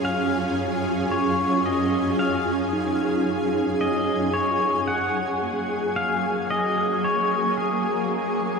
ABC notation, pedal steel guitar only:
X:1
M:4/4
L:1/8
Q:1/4=56
K:F#
V:1 name="Pedal steel guitar"
e2 c d e3 d | c f2 e d c G2 |]